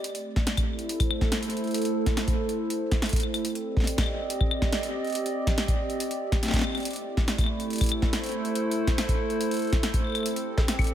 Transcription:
Already playing: C4 G4 D5
0.04 A3, closed hi-hat
0.15 closed hi-hat
0.29 E4
0.36 kick, snare
0.47 snare, closed hi-hat
0.57 A4, kick, closed hi-hat, claves
0.70 C5
0.79 closed hi-hat
0.89 closed hi-hat
1.00 kick, closed hi-hat, claves
1.11 claves
1.21 kick, snare
1.32 snare, closed hi-hat
1.43 closed hi-hat
1.50 closed hi-hat
1.57 closed hi-hat
1.64 closed hi-hat
1.67 closed hi-hat
1.71 closed hi-hat
1.74 closed hi-hat
1.78 closed hi-hat
1.82 closed hi-hat
1.85 closed hi-hat
2.06 kick, snare, closed hi-hat
2.17 snare, closed hi-hat
2.28 kick, closed hi-hat
2.49 closed hi-hat
2.70 closed hi-hat
2.92 kick, snare, closed hi-hat
3.02 snare, closed hi-hat
3.06 closed hi-hat
3.09 closed hi-hat
3.13 kick, closed hi-hat
3.16 closed hi-hat
3.20 closed hi-hat, claves
3.34 closed hi-hat, claves
3.45 C4, closed hi-hat
3.55 G4, closed hi-hat
3.62 D5
3.69 D#5
3.77 kick, snare
3.80 snare
3.84 snare, closed hi-hat
3.98 kick, snare, closed hi-hat, claves
4.01 claves
4.03 claves
4.06 claves
4.30 closed hi-hat
4.41 kick, claves
4.51 claves
4.62 kick, snare
4.73 snare, closed hi-hat
4.83 closed hi-hat
5.04 closed hi-hat
5.07 closed hi-hat
5.10 closed hi-hat
5.12 closed hi-hat
5.15 closed hi-hat
5.26 closed hi-hat
5.47 kick, snare, closed hi-hat
5.58 snare, closed hi-hat
5.68 kick, closed hi-hat
5.90 closed hi-hat
6.00 closed hi-hat
6.11 closed hi-hat
6.32 kick, snare, closed hi-hat
6.43 snare, closed hi-hat
6.45 snare
6.48 snare
6.51 kick, snare
6.54 snare, closed hi-hat
6.56 snare
6.59 snare
6.61 snare, claves
6.67 claves
6.70 claves
6.72 closed hi-hat, claves
6.75 closed hi-hat, claves
6.77 closed hi-hat, claves
6.80 closed hi-hat, claves
6.83 A3, closed hi-hat, claves
6.88 closed hi-hat
6.91 closed hi-hat
6.93 closed hi-hat
6.96 closed hi-hat
7.03 E4
7.17 kick, snare
7.28 snare, closed hi-hat
7.38 kick, closed hi-hat, claves
7.41 claves
7.44 claves
7.46 A4, claves
7.60 closed hi-hat
7.70 closed hi-hat
7.73 closed hi-hat
7.76 closed hi-hat
7.78 kick, closed hi-hat
7.81 C5, closed hi-hat, claves
7.84 closed hi-hat
7.86 closed hi-hat
7.89 closed hi-hat, claves
8.02 kick, snare
8.13 snare, closed hi-hat
8.24 closed hi-hat
8.26 closed hi-hat
8.29 closed hi-hat
8.32 closed hi-hat
8.45 closed hi-hat
8.55 closed hi-hat
8.71 closed hi-hat
8.87 kick, snare, closed hi-hat
8.98 snare, closed hi-hat
9.09 kick, closed hi-hat
9.30 closed hi-hat
9.41 closed hi-hat
9.51 closed hi-hat
9.54 closed hi-hat
9.57 closed hi-hat
9.59 closed hi-hat
9.62 closed hi-hat
9.65 closed hi-hat
9.67 closed hi-hat
9.70 kick, snare, closed hi-hat
9.73 closed hi-hat
9.83 snare, closed hi-hat
9.94 kick, closed hi-hat
10.04 claves
10.07 claves
10.10 claves
10.12 closed hi-hat, claves
10.15 claves
10.18 claves
10.20 claves
10.23 C4, closed hi-hat, claves
10.36 G4, closed hi-hat
10.58 kick, snare
10.68 snare, closed hi-hat
10.77 D5, kick, closed hi-hat, claves
10.82 closed hi-hat
10.84 closed hi-hat
10.87 closed hi-hat

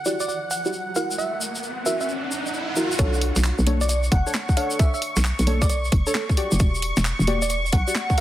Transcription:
Already playing: F#5, riser
0.05 E4 F#4 G4 D5, shaker
0.20 D5, shaker
0.28 D5, shaker
0.51 F#5, shaker
0.65 E4 F#4 G4 D5, shaker
0.73 shaker
0.95 E4 F#4 A#4 F#5, shaker
1.11 shaker
1.18 E5, shaker
1.41 shaker
1.55 shaker
1.63 shaker
1.86 E4 F#4 A#4 E5, shaker
2.01 E5, shaker
2.09 shaker
2.32 shaker
2.46 shaker
2.54 shaker
2.76 E4 F#4 A#4, shaker
2.91 shaker
2.99 B1 D4 A4 C#5 C#6, kick, closed hi-hat, shaker
3.13 shaker
3.21 open hi-hat
3.36 B1, snare, closed hi-hat, shaker
3.44 clap, closed hi-hat
3.58 B1, shaker
3.67 D4 A4 C#5, open hi-hat, high conga
3.81 D5, closed hi-hat, shaker
3.89 D5, closed hi-hat, shaker
4.03 shaker
4.12 F#1 F#5, kick, open hi-hat
4.26 D4 A4 C#5, shaker
4.34 clap, snare, closed hi-hat
4.49 kick, shaker
4.57 D4 A4 C#5 F#5, open hi-hat
4.70 shaker
4.79 E5, kick, closed hi-hat, shaker
4.94 E5, shaker
5.02 open hi-hat
5.16 B1, snare, closed hi-hat, shaker
5.24 clap, closed hi-hat, shaker
5.39 B1, open hi-hat, shaker
5.47 D4 A4 C#5, open hi-hat, high conga
5.61 D5, kick, closed hi-hat, shaker
5.70 D5, closed hi-hat, shaker
5.84 shaker
5.92 F#1, kick, open hi-hat
6.07 D4 A4 C#5, shaker
6.14 A4, clap, snare, closed hi-hat
6.29 kick, shaker
6.37 F#4 G4 D5, open hi-hat
6.52 F#1, shaker
6.59 E1, kick, closed hi-hat, shaker
6.75 shaker
6.82 open hi-hat
6.97 E1, snare, closed hi-hat, shaker
7.05 clap, closed hi-hat, shaker
7.19 E1, shaker
7.27 F#4 G4 D5, open hi-hat, high conga
7.42 D5, closed hi-hat, shaker
7.50 D5, closed hi-hat, shaker
7.66 shaker
7.73 B1 F#5, kick, open hi-hat
7.87 F#4 G4 D5, shaker
7.95 clap, snare, closed hi-hat, shaker
8.10 kick, shaker
8.18 F#4 A#4 E5, open hi-hat

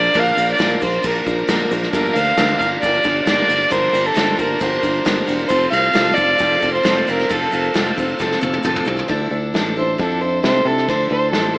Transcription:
Already playing: F3 A#3 D4 F4 A#4 D5
0.03 shaker
0.14 A#1 A#2 D3 F3 A#3 D4 A#4, kick, crash, shaker
0.19 F5
0.36 A#1 F3 A#3 D4 A#4, crash, shaker
0.48 shaker
0.52 D5
0.58 A#1 A#2 D3 F3 A#3 D4 A#4, snare, crash, shaker
0.70 shaker
0.80 A#1 F3 A#3 D4 A#4 C5, kick, crash, shaker
0.93 shaker
1.02 A#1 F3 A#3 D4 A#4, kick, crash, shaker
1.15 shaker
1.26 A#1 F3 A#3 D4 A#4, kick, crash, shaker
1.38 shaker
1.47 A#1 A#2 D3 F3 A#3 D4 A#4, snare, crash, shaker
1.60 shaker
1.71 A#1 F3 A#3 D4 A#4, crash, shaker
1.83 snare
1.92 G1 G2 D3 F3 A#3 D4 F4 G4 A#4, kick, crash, shaker
2.06 shaker
2.14 D2 D4 A#4 F5, crash, shaker
2.18 F3 A#3
2.27 shaker
2.37 D2 G2 D3 F3 A#3 D4 A#4, snare, crash, shaker
2.59 G1 F3 A#3 D4 A#4 F5, kick, crash, shaker
2.81 G1 F3 A#3 D4 D5, kick, crash, shaker
2.85 A#4
2.94 shaker
3.03 G1 F3 A#3 D4 A#4, kick, crash, shaker
3.16 shaker
3.25 G1 G2 D3 F3 A#3 D4 A#4 D5, snare, crash, shaker
3.48 G1 F3 A#3 D4 A#4, crash, shaker
3.61 shaker
3.69 G1 G2 D3 F3 A#3 D4 A#4 C5, kick, crash, shaker
3.83 shaker
3.93 G1 F3 A#3 D4 A#4, crash, shaker
4.05 A4, shaker
4.14 G1 G2 D3 F3 A#3 D4 A#4, snare, crash, shaker
4.36 G1 F3 A#3 D4 A#4, kick, crash, shaker
4.59 G1 F3 A#3 D4 A#4 C5, kick, crash, shaker
4.72 shaker
4.81 G1 F3 A#3 D4 A#4, kick, crash, shaker
4.95 shaker
5.05 G1 G2 D3 F3 A#3 D4 A#4, snare, crash, shaker
5.26 E1 F3 A#3 D4 A#4, crash, shaker
5.39 shaker
5.48 F1 F3 A3 C4 F4 A4 C5, kick, crash, shaker
5.60 shaker
5.70 C2 C4 F4 A4 F5, crash, shaker
5.83 shaker
5.93 C2 F3 C4 F4 A4, snare, crash, shaker
6.14 F1 C4 F4 A4 D5, kick, crash, shaker
6.38 F1 F3 C4 F4 A4, kick, crash, shaker
6.51 shaker
6.60 F1 C4 F4 A4, kick, crash, shaker
6.73 C5, shaker
6.83 F1 F3 C4 F4 A4, snare, crash, shaker
7.06 F1 C4 F4 A4, crash, shaker
7.11 A#4
7.19 snare, shaker
7.29 F1 F3 C4 F4 A4, kick, crash, shaker
7.42 shaker
7.52 F1 C4 F4 A4, crash, shaker
7.64 shaker
7.74 F1 F3 C4 F4 A4, snare, crash, shaker
7.87 shaker
7.96 F1 C4 F4 A4, kick, crash, shaker
8.08 shaker
8.19 F1 F3 C4 F4 A4, kick, snare, shaker
8.32 snare
8.41 F1 C4 F4 A4, high tom, shaker
8.53 high tom, shaker
8.63 F1 F3 C4 F4 A4, mid tom, shaker
8.75 mid tom, shaker
8.80 G3 A3
8.85 C2 B3 C4 F4 A4, floor tom, shaker
8.90 D4 E4
8.96 F4 G4, floor tom, shaker
9.02 A4 B4
9.08 D2 D3 F3 D4 E4 F4 A4 C5, kick, open hi-hat
9.30 D2 D4 E4 A4
9.54 A1 F3 D4 E4 A4, snare, open hi-hat
9.76 D4 E4 A4 C5
9.98 F2 D3 F3 D4 E4 A4, kick, open hi-hat
10.21 D4 E4 A4 C5
10.43 C3 F3 D4 E4 A4 C5, snare, open hi-hat
10.65 C3 E4 A4
10.69 D4
10.78 snare
10.88 D2 D3 F3 D4 E4 A4 C5, kick, open hi-hat
11.09 D2 D4 E4 A4 C5
11.31 A1 F3 D4 A4, snare, open hi-hat
11.35 E4 A4
11.54 A4 C5

